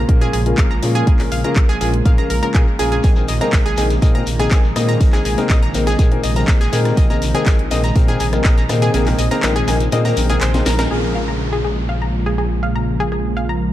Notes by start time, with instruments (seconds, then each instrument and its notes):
Already playing: analog synth pad C#3 F3 G#3 A#3 F4
0.09 detuned saw bass A#2, grand piano A#3 C#4 F4 G#4 A#4, kick, closed hi-hat
0.21 grand piano A#3 C#4 F4 G#4 A#4, synth pluck G#4, closed hi-hat
0.33 detuned saw bass A#1, synth pluck G#4, open hi-hat
0.46 grand piano A#3 C#4 F4 G#4 A#4, closed hi-hat
0.58 detuned saw bass A#1, grand piano A#3 C#4 F4 G#4 A#4, synth pluck F5, kick, clap, closed hi-hat
0.71 synth pluck A#5
0.83 detuned saw bass A#2, grand piano A#3 C#4 F4 G#4 A#4, open hi-hat
0.95 synth pluck G#4, closed hi-hat
1.07 detuned saw bass A#1, grand piano A#3 C#4 F4 G#4 A#4, synth pluck G#4, kick, closed hi-hat
1.19 grand piano A#3 C#4 F4 G#4 A#4, clap, open hi-hat
1.32 detuned saw bass A#1, synth pluck F5, open hi-hat
1.44 grand piano A#3 C#4 F4 G#4 A#4, synth pluck A#5, closed hi-hat
1.56 detuned saw bass A#1, grand piano A#3 C#4 F4 A#4, kick, clap, closed hi-hat
1.69 synth pluck G#4, closed hi-hat
1.81 detuned saw bass A#1, grand piano A#3 C#4 F4 G#4 A#4, synth pluck G#4, open hi-hat
1.94 closed hi-hat
2.06 detuned saw bass A#2, grand piano A#3 C#4 F4 G#4 A#4, synth pluck F5, kick, closed hi-hat
2.18 grand piano A#3 C#4 F4 G#4 A#4, synth pluck A#5, closed hi-hat
2.30 detuned saw bass A#1, synth pluck A#4, open hi-hat
2.43 grand piano A#3 C#4 F4 G#4 A#4, synth pluck A#4, closed hi-hat
2.54 detuned saw bass A#2, grand piano A#3 C#4 F4 G#4 A#4, synth pluck G#4, kick, clap, closed hi-hat
2.79 detuned saw bass A#1, grand piano A#3 C#4 F4 G#4 A#4, synth pluck G#4, open hi-hat
2.92 synth pluck G#4, closed hi-hat
3.03 detuned saw bass A#1, analog synth pad C3 D#3 A#3 D#4, grand piano A#3 C4 D#4 A#4, synth pluck G#4, kick, closed hi-hat, shekere
3.16 grand piano A#3 C4 D#4 G#4 A#4, shekere
3.28 detuned saw bass A#1, synth pluck D#5, snare, closed hi-hat, open hi-hat, shekere
3.41 grand piano A#3 C4 D#4 G#4 A#4, synth pluck A#5, closed hi-hat, shekere
3.53 detuned saw bass A#1, grand piano A#3 C4 D#4 A#4, kick, snare, clap, closed hi-hat, shekere
3.66 synth pluck G#4, closed hi-hat
3.77 detuned saw bass A#1, grand piano A#3 C4 D#4 G#4 A#4, synth pluck G#4, closed hi-hat, open hi-hat, shekere
3.90 snare, closed hi-hat, shekere
4.02 detuned saw bass A#2, grand piano A#3 C4 D#4 G#4 A#4, synth pluck D#5, kick, closed hi-hat, shekere
4.15 grand piano A#3 C4 D#4 G#4 A#4, synth pluck A#5, closed hi-hat
4.27 detuned saw bass A#1, closed hi-hat, open hi-hat, shekere
4.39 grand piano A#3 C4 D#4 G#4 A#4, synth pluck G#4, cross-stick, closed hi-hat, shekere
4.51 detuned saw bass A#1, grand piano A#3 C4 D#4 A#4, synth pluck G#4, kick, snare, clap, closed hi-hat, shekere
4.64 shekere
4.76 detuned saw bass A#2, grand piano A#3 C4 D#4 G#4 A#4, synth pluck D#5, cross-stick, closed hi-hat, open hi-hat, shekere
4.89 synth pluck A#5, closed hi-hat, shekere
5.01 detuned saw bass A#1, grand piano C4 D#4 G#4 A#4, kick, closed hi-hat, shekere
5.13 grand piano A#3 C4 D#4 G#4 A#4, synth pluck G#4, snare, clap, shekere
5.25 detuned saw bass A#1, synth pluck G#4, closed hi-hat, open hi-hat, shekere
5.38 grand piano A#3 C4 D#4 G#4 A#4, closed hi-hat, shekere
5.49 detuned saw bass A#1, synth pluck D#5, kick, snare, clap, closed hi-hat, shekere
5.62 synth pluck A#5, closed hi-hat
5.74 detuned saw bass A#1, grand piano A#3 C4 D#4 G#4 A#4, closed hi-hat, open hi-hat, shekere
5.86 synth pluck G#4, snare, closed hi-hat, shekere
5.99 detuned saw bass A#2, grand piano A#3 C4 D#4 G#4 A#4, synth pluck G#4, kick, closed hi-hat, shekere
6.12 grand piano A#3 C4 D#4 G#4 A#4, closed hi-hat
6.23 detuned saw bass A#1, synth pluck D#5, open hi-hat, shekere
6.36 grand piano A#3 C4 D#4 G#4 A#4, synth pluck A#5, closed hi-hat, shekere
6.47 detuned saw bass A#1, grand piano A#3 C4 D#4 G#4 A#4, kick, snare, clap, closed hi-hat, shekere
6.61 synth pluck G#4, snare, shekere
6.73 detuned saw bass A#2, grand piano A#3 C4 D#4 G#4 A#4, synth pluck G#4, closed hi-hat, open hi-hat, shekere
6.85 cross-stick, snare, closed hi-hat, shekere
6.97 detuned saw bass A#1, grand piano A#3 C4 D#4 G#4 A#4, analog synth pad C4, synth pluck D#5, kick, closed hi-hat, shekere
7.10 grand piano A#3 C4 D#4 G#4 A#4, synth pluck A#5, shekere
7.22 detuned saw bass A#1, snare, closed hi-hat, open hi-hat, shekere
7.35 grand piano A#3 C4 D#4 G#4 A#4, synth pluck G#4, closed hi-hat, shekere
7.46 detuned saw bass A#1, synth pluck G#4, kick, snare, clap, closed hi-hat, shekere
7.59 closed hi-hat
7.71 detuned saw bass A#1, grand piano A#3 C4 D#4 G#4 A#4, synth pluck D#5, closed hi-hat, open hi-hat, shekere
7.84 synth pluck A#5, snare, closed hi-hat, shekere
7.96 detuned saw bass A#2, grand piano A#3 C4 D#4 G#4 A#4, kick, closed hi-hat, shekere
8.08 grand piano A#3 C4 D#4 G#4 A#4, synth pluck G#4, closed hi-hat
8.20 detuned saw bass A#1, synth pluck G#4, closed hi-hat, open hi-hat, shekere
8.33 grand piano A#3 C4 D#4 G#4 A#4, cross-stick, closed hi-hat, shekere
8.44 detuned saw bass A#1, grand piano A#3 C4 D#4 G#4 A#4, synth pluck D#5, kick, snare, clap, closed hi-hat, shekere
8.58 synth pluck A#5, shekere
8.69 detuned saw bass A#2, grand piano A#3 C4 D#4 G#4 A#4, cross-stick, closed hi-hat, open hi-hat, shekere
8.82 synth pluck G#4, closed hi-hat, shekere
8.94 detuned saw bass A#1, grand piano A#3 C4 D#4 G#4 A#4, synth pluck G#4, closed hi-hat, shekere
9.06 grand piano A#3 C4 D#4 G#4 A#4, snare, clap, open hi-hat, shekere
9.18 detuned saw bass A#1, synth pluck D#5, closed hi-hat, open hi-hat, shekere
9.31 grand piano A#3 C4 D#4 G#4 A#4, synth pluck A#5, closed hi-hat, shekere
9.43 detuned saw bass A#1, grand piano A#3 C4 D#4 G#4 A#4, snare, clap, closed hi-hat, shekere
9.56 synth pluck G#4, closed hi-hat
9.68 detuned saw bass A#1, grand piano A#3 C4 D#4 G#4 A#4, synth pluck G#4, snare, closed hi-hat, open hi-hat, shekere
9.80 closed hi-hat, shekere
9.92 detuned saw bass A#2, grand piano A#3 C4 D#4 G#4 A#4, synth pluck D#5, closed hi-hat, shekere
10.05 grand piano A#3 C4 D#4 G#4 A#4, synth pluck A#5, snare, closed hi-hat, shekere
10.17 detuned saw bass A#1, grand piano A#3 C4 D#4 G#4 A#4, open hi-hat, shekere
10.29 grand piano A#3 C4 D#4 G#4 A#4, synth pluck G#4, closed hi-hat, shekere
10.41 detuned saw bass A#1, synth pluck C5, snare, clap, closed hi-hat, shekere
10.54 grand piano A#3 C4 D#4 G#4 D#5, snare, closed hi-hat, shekere
10.66 detuned saw bass A#1, synth pluck A#4, snare, closed hi-hat, open hi-hat, shekere
10.79 grand piano A#3 C4 D#4 G#4 A#4, synth pluck A#4, snare, closed hi-hat, shekere
10.91 detuned saw bass A#1, analog synth pad C#3 F3 G#3 A#3 F4, grand piano A#3 C#4 F4 G#4 A#4, synth pluck G#4, downlifter
11.15 synth pluck F5
11.28 synth pluck A#5
11.53 synth pluck G#4
11.65 synth pluck G#4
11.89 synth pluck F5
12.02 synth pluck A#5
12.26 synth pluck G#4
12.38 synth pluck G#4
12.63 synth pluck F5
12.76 synth pluck A#5
13.00 synth pluck G#4
13.12 synth pluck G#4
13.37 synth pluck F5
13.49 synth pluck A#5